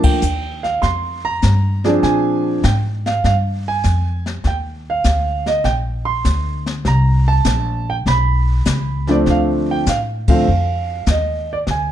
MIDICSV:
0, 0, Header, 1, 5, 480
1, 0, Start_track
1, 0, Tempo, 602410
1, 1622, Time_signature, 4, 2, 24, 8
1, 9497, End_track
2, 0, Start_track
2, 0, Title_t, "Grand piano"
2, 0, Program_c, 0, 0
2, 0, Note_on_c, 0, 53, 67
2, 0, Note_on_c, 0, 57, 60
2, 0, Note_on_c, 0, 58, 62
2, 0, Note_on_c, 0, 62, 70
2, 31, Note_on_c, 0, 79, 88
2, 153, Note_off_c, 0, 53, 0
2, 156, Note_off_c, 0, 57, 0
2, 157, Note_off_c, 0, 58, 0
2, 160, Note_off_c, 0, 62, 0
2, 504, Note_on_c, 0, 77, 75
2, 527, Note_off_c, 0, 79, 0
2, 646, Note_off_c, 0, 77, 0
2, 652, Note_on_c, 0, 84, 84
2, 994, Note_on_c, 0, 82, 94
2, 998, Note_off_c, 0, 84, 0
2, 1472, Note_on_c, 0, 74, 71
2, 1473, Note_on_c, 0, 53, 62
2, 1475, Note_on_c, 0, 68, 59
2, 1486, Note_on_c, 0, 60, 56
2, 1488, Note_off_c, 0, 82, 0
2, 1488, Note_on_c, 0, 62, 74
2, 1512, Note_off_c, 0, 74, 0
2, 1618, Note_on_c, 0, 80, 80
2, 2072, Note_off_c, 0, 53, 0
2, 2074, Note_off_c, 0, 68, 0
2, 2079, Note_off_c, 0, 60, 0
2, 2080, Note_off_c, 0, 62, 0
2, 2108, Note_on_c, 0, 79, 75
2, 2115, Note_off_c, 0, 80, 0
2, 2182, Note_off_c, 0, 79, 0
2, 2440, Note_on_c, 0, 77, 71
2, 2579, Note_off_c, 0, 77, 0
2, 2591, Note_on_c, 0, 77, 78
2, 2664, Note_off_c, 0, 77, 0
2, 2933, Note_on_c, 0, 80, 85
2, 3372, Note_off_c, 0, 80, 0
2, 3565, Note_on_c, 0, 79, 70
2, 3637, Note_off_c, 0, 79, 0
2, 3903, Note_on_c, 0, 77, 79
2, 4337, Note_off_c, 0, 77, 0
2, 4360, Note_on_c, 0, 75, 77
2, 4496, Note_off_c, 0, 75, 0
2, 4501, Note_on_c, 0, 79, 78
2, 4576, Note_off_c, 0, 79, 0
2, 4823, Note_on_c, 0, 84, 88
2, 5277, Note_off_c, 0, 84, 0
2, 5478, Note_on_c, 0, 82, 83
2, 5779, Note_off_c, 0, 82, 0
2, 5800, Note_on_c, 0, 81, 91
2, 6291, Note_off_c, 0, 81, 0
2, 6292, Note_on_c, 0, 79, 82
2, 6332, Note_off_c, 0, 79, 0
2, 6436, Note_on_c, 0, 83, 90
2, 7231, Note_on_c, 0, 62, 62
2, 7237, Note_on_c, 0, 53, 59
2, 7237, Note_on_c, 0, 57, 58
2, 7244, Note_on_c, 0, 60, 66
2, 7259, Note_on_c, 0, 74, 72
2, 7264, Note_off_c, 0, 83, 0
2, 7299, Note_off_c, 0, 74, 0
2, 7411, Note_on_c, 0, 77, 81
2, 7482, Note_off_c, 0, 77, 0
2, 7739, Note_on_c, 0, 79, 81
2, 7831, Note_off_c, 0, 62, 0
2, 7834, Note_off_c, 0, 53, 0
2, 7834, Note_off_c, 0, 57, 0
2, 7837, Note_off_c, 0, 60, 0
2, 7879, Note_off_c, 0, 79, 0
2, 7880, Note_on_c, 0, 77, 81
2, 7952, Note_off_c, 0, 77, 0
2, 8196, Note_on_c, 0, 50, 62
2, 8202, Note_on_c, 0, 77, 76
2, 8204, Note_on_c, 0, 53, 59
2, 8204, Note_on_c, 0, 57, 60
2, 8205, Note_on_c, 0, 60, 67
2, 8328, Note_off_c, 0, 50, 0
2, 8332, Note_off_c, 0, 53, 0
2, 8332, Note_off_c, 0, 57, 0
2, 8333, Note_off_c, 0, 60, 0
2, 8794, Note_off_c, 0, 77, 0
2, 8848, Note_on_c, 0, 75, 77
2, 9175, Note_off_c, 0, 75, 0
2, 9186, Note_on_c, 0, 74, 72
2, 9226, Note_off_c, 0, 74, 0
2, 9328, Note_on_c, 0, 80, 74
2, 9497, Note_off_c, 0, 80, 0
2, 9497, End_track
3, 0, Start_track
3, 0, Title_t, "Upright bass"
3, 0, Program_c, 1, 32
3, 176, Note_on_c, 1, 39, 79
3, 645, Note_off_c, 1, 39, 0
3, 657, Note_on_c, 1, 41, 77
3, 1125, Note_off_c, 1, 41, 0
3, 1138, Note_on_c, 1, 43, 74
3, 1606, Note_off_c, 1, 43, 0
3, 1619, Note_on_c, 1, 46, 68
3, 2086, Note_off_c, 1, 46, 0
3, 2101, Note_on_c, 1, 44, 80
3, 2568, Note_off_c, 1, 44, 0
3, 2580, Note_on_c, 1, 43, 66
3, 3047, Note_off_c, 1, 43, 0
3, 3063, Note_on_c, 1, 41, 72
3, 3529, Note_off_c, 1, 41, 0
3, 3538, Note_on_c, 1, 39, 76
3, 4006, Note_off_c, 1, 39, 0
3, 4019, Note_on_c, 1, 38, 78
3, 4487, Note_off_c, 1, 38, 0
3, 4495, Note_on_c, 1, 34, 64
3, 4964, Note_off_c, 1, 34, 0
3, 4978, Note_on_c, 1, 38, 78
3, 5446, Note_off_c, 1, 38, 0
3, 5458, Note_on_c, 1, 36, 74
3, 5926, Note_off_c, 1, 36, 0
3, 5936, Note_on_c, 1, 34, 80
3, 6405, Note_off_c, 1, 34, 0
3, 6421, Note_on_c, 1, 35, 72
3, 6887, Note_off_c, 1, 35, 0
3, 6902, Note_on_c, 1, 37, 77
3, 7367, Note_off_c, 1, 37, 0
3, 7383, Note_on_c, 1, 38, 79
3, 7848, Note_off_c, 1, 38, 0
3, 7862, Note_on_c, 1, 45, 84
3, 8327, Note_off_c, 1, 45, 0
3, 8350, Note_on_c, 1, 41, 73
3, 8811, Note_off_c, 1, 41, 0
3, 8818, Note_on_c, 1, 39, 72
3, 9284, Note_off_c, 1, 39, 0
3, 9301, Note_on_c, 1, 38, 75
3, 9497, Note_off_c, 1, 38, 0
3, 9497, End_track
4, 0, Start_track
4, 0, Title_t, "Muted upright bass strokes"
4, 32, Note_on_c, 9, 29, 35
4, 112, Note_off_c, 9, 29, 0
4, 9497, End_track
5, 0, Start_track
5, 0, Title_t, "Drums"
5, 27, Note_on_c, 9, 51, 69
5, 32, Note_on_c, 9, 36, 73
5, 107, Note_off_c, 9, 51, 0
5, 112, Note_off_c, 9, 36, 0
5, 172, Note_on_c, 9, 44, 59
5, 252, Note_off_c, 9, 44, 0
5, 511, Note_on_c, 9, 38, 30
5, 590, Note_off_c, 9, 38, 0
5, 657, Note_on_c, 9, 25, 40
5, 657, Note_on_c, 9, 38, 39
5, 658, Note_on_c, 9, 36, 16
5, 737, Note_off_c, 9, 38, 0
5, 738, Note_off_c, 9, 36, 0
5, 1132, Note_on_c, 9, 44, 46
5, 1136, Note_on_c, 9, 38, 49
5, 1139, Note_on_c, 9, 36, 19
5, 1212, Note_off_c, 9, 44, 0
5, 1216, Note_off_c, 9, 38, 0
5, 1218, Note_off_c, 9, 36, 0
5, 1468, Note_on_c, 9, 38, 30
5, 1548, Note_off_c, 9, 38, 0
5, 1617, Note_off_c, 9, 25, 0
5, 1617, Note_on_c, 9, 25, 40
5, 1617, Note_on_c, 9, 38, 33
5, 1619, Note_on_c, 9, 36, 16
5, 1696, Note_off_c, 9, 38, 0
5, 1698, Note_off_c, 9, 36, 0
5, 2097, Note_on_c, 9, 44, 44
5, 2101, Note_on_c, 9, 36, 22
5, 2101, Note_on_c, 9, 38, 52
5, 2177, Note_off_c, 9, 44, 0
5, 2180, Note_off_c, 9, 36, 0
5, 2181, Note_off_c, 9, 38, 0
5, 2437, Note_on_c, 9, 38, 31
5, 2517, Note_off_c, 9, 38, 0
5, 2581, Note_on_c, 9, 36, 16
5, 2583, Note_off_c, 9, 25, 0
5, 2583, Note_on_c, 9, 25, 46
5, 2583, Note_on_c, 9, 38, 37
5, 2661, Note_off_c, 9, 36, 0
5, 2663, Note_off_c, 9, 38, 0
5, 3056, Note_on_c, 9, 44, 43
5, 3060, Note_on_c, 9, 38, 49
5, 3061, Note_on_c, 9, 36, 17
5, 3136, Note_off_c, 9, 44, 0
5, 3140, Note_off_c, 9, 36, 0
5, 3140, Note_off_c, 9, 38, 0
5, 3394, Note_on_c, 9, 38, 30
5, 3474, Note_off_c, 9, 38, 0
5, 3538, Note_off_c, 9, 25, 0
5, 3538, Note_on_c, 9, 25, 36
5, 3538, Note_on_c, 9, 38, 37
5, 3540, Note_on_c, 9, 36, 19
5, 3618, Note_off_c, 9, 38, 0
5, 3619, Note_off_c, 9, 36, 0
5, 4017, Note_on_c, 9, 44, 47
5, 4020, Note_on_c, 9, 36, 21
5, 4021, Note_on_c, 9, 38, 49
5, 4096, Note_off_c, 9, 44, 0
5, 4100, Note_off_c, 9, 36, 0
5, 4100, Note_off_c, 9, 38, 0
5, 4352, Note_on_c, 9, 38, 32
5, 4432, Note_off_c, 9, 38, 0
5, 4495, Note_off_c, 9, 25, 0
5, 4495, Note_on_c, 9, 25, 39
5, 4495, Note_on_c, 9, 38, 40
5, 4498, Note_on_c, 9, 36, 19
5, 4575, Note_off_c, 9, 38, 0
5, 4578, Note_off_c, 9, 36, 0
5, 4975, Note_on_c, 9, 44, 43
5, 4979, Note_on_c, 9, 36, 17
5, 4979, Note_on_c, 9, 38, 47
5, 5054, Note_off_c, 9, 44, 0
5, 5058, Note_off_c, 9, 36, 0
5, 5058, Note_off_c, 9, 38, 0
5, 5309, Note_on_c, 9, 38, 30
5, 5388, Note_off_c, 9, 38, 0
5, 5457, Note_off_c, 9, 25, 0
5, 5457, Note_on_c, 9, 25, 43
5, 5457, Note_on_c, 9, 38, 37
5, 5458, Note_on_c, 9, 36, 21
5, 5537, Note_off_c, 9, 38, 0
5, 5538, Note_off_c, 9, 36, 0
5, 5932, Note_on_c, 9, 44, 54
5, 5936, Note_on_c, 9, 38, 51
5, 5939, Note_on_c, 9, 36, 22
5, 6012, Note_off_c, 9, 44, 0
5, 6016, Note_off_c, 9, 38, 0
5, 6018, Note_off_c, 9, 36, 0
5, 6420, Note_on_c, 9, 36, 17
5, 6424, Note_off_c, 9, 25, 0
5, 6424, Note_on_c, 9, 25, 48
5, 6424, Note_on_c, 9, 38, 39
5, 6500, Note_off_c, 9, 36, 0
5, 6503, Note_off_c, 9, 38, 0
5, 6896, Note_on_c, 9, 44, 55
5, 6900, Note_on_c, 9, 36, 17
5, 6900, Note_on_c, 9, 38, 51
5, 6976, Note_off_c, 9, 44, 0
5, 6979, Note_off_c, 9, 36, 0
5, 6980, Note_off_c, 9, 38, 0
5, 7229, Note_on_c, 9, 38, 29
5, 7309, Note_off_c, 9, 38, 0
5, 7378, Note_off_c, 9, 25, 0
5, 7378, Note_on_c, 9, 25, 42
5, 7378, Note_on_c, 9, 38, 35
5, 7379, Note_on_c, 9, 36, 19
5, 7458, Note_off_c, 9, 38, 0
5, 7459, Note_off_c, 9, 36, 0
5, 7860, Note_on_c, 9, 44, 60
5, 7861, Note_on_c, 9, 36, 16
5, 7864, Note_on_c, 9, 38, 55
5, 7940, Note_off_c, 9, 36, 0
5, 7940, Note_off_c, 9, 44, 0
5, 7944, Note_off_c, 9, 38, 0
5, 8188, Note_on_c, 9, 51, 61
5, 8192, Note_on_c, 9, 36, 69
5, 8268, Note_off_c, 9, 51, 0
5, 8272, Note_off_c, 9, 36, 0
5, 8343, Note_off_c, 9, 25, 0
5, 8343, Note_on_c, 9, 25, 44
5, 8816, Note_on_c, 9, 44, 45
5, 8820, Note_on_c, 9, 36, 20
5, 8820, Note_on_c, 9, 38, 55
5, 8896, Note_off_c, 9, 44, 0
5, 8900, Note_off_c, 9, 36, 0
5, 8900, Note_off_c, 9, 38, 0
5, 9297, Note_off_c, 9, 25, 0
5, 9297, Note_on_c, 9, 25, 49
5, 9297, Note_on_c, 9, 38, 35
5, 9300, Note_on_c, 9, 36, 18
5, 9377, Note_off_c, 9, 38, 0
5, 9380, Note_off_c, 9, 36, 0
5, 9497, Note_off_c, 9, 25, 0
5, 9497, End_track
0, 0, End_of_file